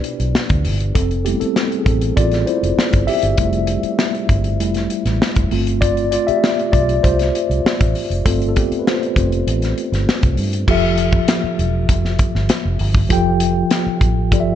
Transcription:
Already playing: B2 B3 D4 E4 G4 B4 D5
0.04 closed hi-hat
0.20 B1, closed hi-hat
0.35 snare
0.49 D2, kick, closed hi-hat
0.65 G1, open hi-hat
0.80 closed hi-hat
0.95 F1 C4 A4, kick, closed hi-hat
1.11 closed hi-hat
1.25 G3 A3 B3 E4 G4, closed hi-hat
1.40 C4 A4, muted fingered electric bass stroke, closed hi-hat
1.56 snare
1.72 closed hi-hat
1.79 G#4
1.86 A1 C4 A4, kick, closed hi-hat
2.01 closed hi-hat
2.17 A1 F4 D5, kick, closed hi-hat
2.32 snare, closed hi-hat
2.46 E4 C5, closed hi-hat
2.63 F1, closed hi-hat
2.77 muted fingered electric bass stroke, snare
2.93 G1, kick, closed hi-hat
3.07 G4 E5, open hi-hat
3.22 G1, closed hi-hat
3.38 F1 G3 A3 E4, kick, closed hi-hat
3.53 closed hi-hat
3.67 closed hi-hat
3.83 muted fingered electric bass stroke, closed hi-hat
3.99 snare
4.15 closed hi-hat
4.29 G1, kick, closed hi-hat
4.44 closed hi-hat
4.60 F1 G3 A3 E4, closed hi-hat
4.74 snare, closed hi-hat
4.90 closed hi-hat
5.05 A1, snare, closed hi-hat
5.22 snare
5.35 E1, kick, closed hi-hat
5.51 G1 A3 C4 F4, open hi-hat
5.67 closed hi-hat
5.81 F4 D5, kick, closed hi-hat
5.97 closed hi-hat
6.11 F4 D5, closed hi-hat
6.27 G4 E5, muted fingered electric bass stroke, closed hi-hat
6.44 snare
6.59 closed hi-hat
6.72 B1 F4 D5, kick, closed hi-hat
6.89 closed hi-hat
7.03 C2 F4 C5, kick, closed hi-hat
7.19 snare, closed hi-hat
7.35 closed hi-hat
7.50 C2, closed hi-hat
7.65 muted fingered electric bass stroke, snare
7.81 A1, kick, closed hi-hat
7.95 open hi-hat
8.10 F1, closed hi-hat
8.25 G1 A3 C4 F4 A4, kick, closed hi-hat
8.42 closed hi-hat
8.49 A4
8.56 B3 G4, kick, closed hi-hat
8.71 muted fingered electric bass stroke, closed hi-hat
8.79 B4
8.87 F4 C5, snare
9.03 closed hi-hat
9.16 F1 A3 C4 F4, kick, closed hi-hat
9.32 closed hi-hat
9.47 A1, closed hi-hat
9.62 snare, closed hi-hat
9.78 closed hi-hat
9.92 G1, snare, closed hi-hat
10.07 muted fingered electric bass stroke, snare
10.23 C2, kick, closed hi-hat
10.37 G2, open hi-hat
10.53 closed hi-hat
10.67 F1 F3 F4 G4 A4 E5, kick, crash
10.98 closed hi-hat
11.13 kick
11.28 snare, closed hi-hat
11.44 muted fingered electric bass stroke
11.59 E1, closed hi-hat
11.89 F1, kick, closed hi-hat
12.05 snare
12.19 kick, closed hi-hat
12.35 G1, snare
12.49 snare, closed hi-hat
12.65 F1
12.79 G1, open hi-hat
12.95 kick
13.09 F1 F3 F4 G4 A4 G5, kick, closed hi-hat
13.40 closed hi-hat
13.71 snare, closed hi-hat
13.86 muted fingered electric bass stroke
14.01 A1, kick, closed hi-hat
14.31 G1 F3 F4 G4 A4 D5, kick, closed hi-hat
14.40 E5

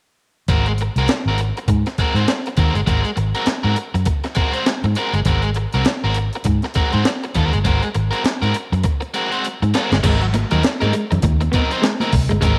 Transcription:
0.48 G#1 G#3 C4 F#4 A#4, kick, closed hi-hat
0.66 muted overdriven electric guitar stroke, closed hi-hat
0.78 muted overdriven electric guitar stroke, closed hi-hat
0.96 C2 G#3 C4 F#4 A#4, closed hi-hat
1.08 muted fingered electric bass stroke, muted overdriven electric guitar stroke, snare, closed hi-hat
1.26 G#1 C4 F#4 A#4
1.30 G#3
1.38 muted overdriven electric guitar stroke, closed hi-hat
1.57 muted overdriven electric guitar stroke, closed hi-hat
1.68 G#2, muted overdriven electric guitar stroke, kick, closed hi-hat
1.86 muted overdriven electric guitar stroke, snare, closed hi-hat
1.98 G#3 C4 F#4 A#4, muted fingered electric bass stroke, kick, closed hi-hat
2.15 G#2 G#3 C4 F#4 C5, closed hi-hat
2.28 snare, closed hi-hat
2.46 muted overdriven electric guitar stroke, closed hi-hat
2.57 D#2 G#3 C4 F#4 A#4, kick, closed hi-hat
2.74 G1, muted overdriven electric guitar stroke, closed hi-hat
2.87 G#1 G#3 C4 F#4 A#4, kick, closed hi-hat
3.04 muted overdriven electric guitar stroke, closed hi-hat
3.16 G#1, muted overdriven electric guitar stroke, closed hi-hat
3.35 G#3 C4 F#4 A#4, closed hi-hat
3.46 muted fingered electric bass stroke, muted overdriven electric guitar stroke, snare, closed hi-hat
3.63 G#2 G#3 C4 F#4 A#4
3.76 muted overdriven electric guitar stroke, closed hi-hat
3.94 F#2, muted overdriven electric guitar stroke, closed hi-hat
4.05 muted overdriven electric guitar stroke, kick, closed hi-hat
4.24 muted overdriven electric guitar stroke, snare, closed hi-hat
4.35 G#3 C4 F#4 A#4, kick, closed hi-hat
4.53 G#3 C4 F#4 C5, closed hi-hat
4.66 snare, closed hi-hat
4.84 G#2, muted overdriven electric guitar stroke, closed hi-hat
4.95 G#3 C4 F#4 A#4, closed hi-hat
5.13 G1, muted overdriven electric guitar stroke, closed hi-hat
5.25 G#1 G#3 C4 F#4 A#4, kick, closed hi-hat
5.42 muted overdriven electric guitar stroke, closed hi-hat
5.54 muted overdriven electric guitar stroke, closed hi-hat
5.73 C2 G#3 C4 F#4 A#4, closed hi-hat
5.85 muted fingered electric bass stroke, muted overdriven electric guitar stroke, snare, closed hi-hat
6.04 G#1 G#3 C4 F#4 A#4
6.14 muted overdriven electric guitar stroke, closed hi-hat
6.33 muted overdriven electric guitar stroke, closed hi-hat
6.44 G#2, muted overdriven electric guitar stroke, kick, closed hi-hat
6.62 muted overdriven electric guitar stroke, snare, closed hi-hat
6.74 G#3 C4 F#4 A#4, muted fingered electric bass stroke, kick, closed hi-hat
6.92 G#2 G#3 C4 F#4 C5, closed hi-hat
7.05 snare, closed hi-hat
7.23 muted overdriven electric guitar stroke, closed hi-hat
7.34 D#2 G#3 C4 F#4 A#4, kick, closed hi-hat
7.53 G1, muted overdriven electric guitar stroke, closed hi-hat
7.64 G#1 G#3 C4 F#4 A#4, kick, closed hi-hat
7.82 muted overdriven electric guitar stroke, closed hi-hat
7.94 G#1, muted overdriven electric guitar stroke, closed hi-hat
8.11 G#3 C4 F#4 A#4, closed hi-hat
8.23 muted overdriven electric guitar stroke, muted fingered electric bass stroke, snare, closed hi-hat
8.42 G#2 G#3 C4 F#4 A#4, closed hi-hat
8.54 muted overdriven electric guitar stroke, closed hi-hat
8.72 F#2, muted overdriven electric guitar stroke, closed hi-hat
8.83 muted overdriven electric guitar stroke, kick, closed hi-hat
9.01 muted overdriven electric guitar stroke, closed hi-hat
9.14 G#3 C4 F#4 A#4, closed hi-hat
9.32 G#3 C4 F#4 C5, closed hi-hat
9.45 closed hi-hat
9.62 G#2, muted overdriven electric guitar stroke, closed hi-hat
9.74 G#3 C4 F#4 A#4, snare, closed hi-hat
9.91 G1, muted overdriven electric guitar stroke, snare, closed hi-hat
10.03 G#1 F#3 G#3 C4 D#4 A#4, kick, closed hi-hat, crash, muted conga, low conga
10.21 muted overdriven electric guitar stroke, closed hi-hat
10.33 muted clean electric guitar stroke, muted overdriven electric guitar stroke, closed hi-hat, high conga
10.51 D#2 F#3 C4 D#4 A#4, closed hi-hat
10.63 muted overdriven electric guitar stroke, muted clean electric guitar stroke, muted fingered electric bass stroke, snare, closed hi-hat
10.81 G#2 F#3 G#3 C4 D#4 A#4, closed hi-hat, muted conga
10.93 G#3, muted overdriven electric guitar stroke, closed hi-hat
11.11 F#2, muted overdriven electric guitar stroke, closed hi-hat, low conga
11.22 D#2, muted overdriven electric guitar stroke, kick, closed hi-hat, muted conga, high conga
11.41 muted overdriven electric guitar stroke, closed hi-hat, muted conga
11.52 F#3 B3 C4 D#4 A#4, kick, closed hi-hat
11.71 F#3 C4 D#4 C5, closed hi-hat
11.82 G#3, muted overdriven electric guitar stroke, snare, closed hi-hat, muted conga
12.00 F#3 C4 D#4 A#4, closed hi-hat, high conga
12.11 C2, muted clean electric guitar stroke, muted overdriven electric guitar stroke, kick, open hi-hat
12.29 G1 G#3, muted overdriven electric guitar stroke, closed hi-hat
12.41 G#1 F#3 G#3 C4 D#4 A#4, kick, closed hi-hat, muted conga, low conga

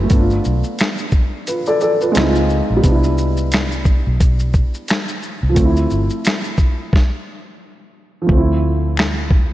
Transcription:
Already playing: F#3 B3 C4 E4 A4
0.03 A3
0.09 G1 B3, kick, closed hi-hat, shaker
0.14 D4
0.19 F4
0.30 shaker
0.44 B1, shaker
0.64 shaker
0.79 finger snap, snare, closed hi-hat, shaker
0.98 shaker
1.11 kick, shaker
1.47 F4 B4, closed hi-hat, shaker
1.66 A4 D5, shaker
1.80 A4 D5, shaker
2.01 F4 B4, shaker
2.12 G#3 C4, closed hi-hat, shaker
2.17 C#2 D#4 E4, finger snap, snare
2.26 F4
2.35 shaker
2.49 shaker
2.70 A#1
2.77 G3
2.82 C2 B3, kick, closed hi-hat, shaker
2.87 D4
2.92 E4
3.04 shaker
3.18 shaker
3.37 shaker
3.52 finger snap, snare, closed hi-hat, shaker
3.71 shaker
3.85 kick, shaker
4.07 B1
4.20 kick, closed hi-hat, shaker
4.39 shaker
4.54 kick, shaker
4.74 shaker
4.88 finger snap, snare, closed hi-hat, shaker
5.08 shaker
5.22 shaker
5.43 C2
5.49 F3
5.54 D2 A3, kick, closed hi-hat, shaker
5.60 C4
5.65 E4
5.76 shaker
5.90 G1, shaker
6.10 shaker
6.25 finger snap, snare, closed hi-hat, shaker
6.44 shaker
6.57 kick, shaker
6.93 kick, snare
8.22 F3
8.27 D2 A3, kick
8.32 C4
8.37 E4
8.97 finger snap
8.99 finger snap, snare
9.31 kick

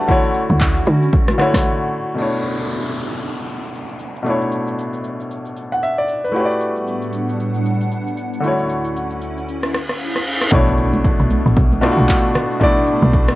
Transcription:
Already playing: A3 E4 F#4 G4 B4 D5 E5 F#5
0.00 A5
0.08 D3 A3 C#4 E4 F#4 C#5, kick, low conga, shaker
0.24 shaker
0.34 shaker
0.50 D2, high conga, shaker
0.61 kick, clap, shaker
0.75 shaker
0.86 D3, high conga, shaker
1.03 shaker
1.13 kick, low conga, shaker
1.28 cross-stick, high conga, shaker
1.38 D3 A3 E4 F#4 C#5, cross-stick, shaker
1.54 kick, cross-stick, snare, high conga, shaker
2.14 B2 A3 D4, downlifter, shaker
2.20 E4 C#5
2.32 shaker
2.43 shaker
2.58 shaker
2.70 shaker
2.84 shaker
2.95 shaker
3.12 shaker
3.22 shaker
3.37 shaker
3.48 shaker
3.63 shaker
3.74 shaker
3.89 shaker
3.99 shaker
4.16 shaker
4.23 B2 A3 D4, shaker
4.28 E4 C#5
4.41 shaker
4.52 shaker
4.67 shaker
4.79 shaker
4.93 shaker
5.04 shaker
5.20 shaker
5.31 shaker
5.45 shaker
5.57 shaker
5.72 F#5, shaker
5.83 E5, shaker
5.98 D5, shaker
6.08 shaker
6.24 B4, shaker
6.32 A2 G3 A3 B3 D4 E4 F#4 F#5, shaker
6.36 G4 B4 C#5
6.45 D5
6.50 shaker
6.61 shaker
6.76 shaker
6.87 shaker
7.02 shaker
7.13 shaker
7.29 shaker
7.40 shaker
7.54 shaker
7.66 shaker
7.81 shaker
7.91 shaker
8.07 shaker
8.17 shaker
8.33 shaker
8.40 D2 D3 A3 C#4 E4, shaker
8.46 F#4 C#5
8.59 shaker
8.69 shaker
8.85 shaker
8.96 shaker
9.10 shaker
9.21 shaker
9.37 shaker
9.48 reverse cymbal, shaker
9.63 cross-stick, shaker
9.74 cross-stick, shaker
9.89 cross-stick, shaker
10.00 shaker
10.15 cross-stick, shaker
10.26 shaker
10.42 cross-stick, shaker
10.51 B1 B2 A3 B3 D4 E4 C#5, kick, impact, low conga, shaker
10.67 shaker
10.78 shaker
10.93 high conga, shaker
11.05 kick, shaker
11.19 B1, shaker
11.30 high conga, shaker
11.46 A1, shaker
11.57 B1, kick, low conga, shaker
11.72 high conga, shaker
11.81 B2 A3 D4 E4 F4, cross-stick, shaker
11.91 F#4
11.97 B1, high conga, shaker
12.09 kick, clap, shaker
12.24 shaker
12.34 cross-stick, low conga, shaker
12.51 shaker
12.59 B2 A3 D4 E4 D5, kick, low conga, shaker
12.76 shaker
12.87 shaker
13.02 B1, high conga, shaker
13.13 kick, shaker
13.28 cross-stick, shaker

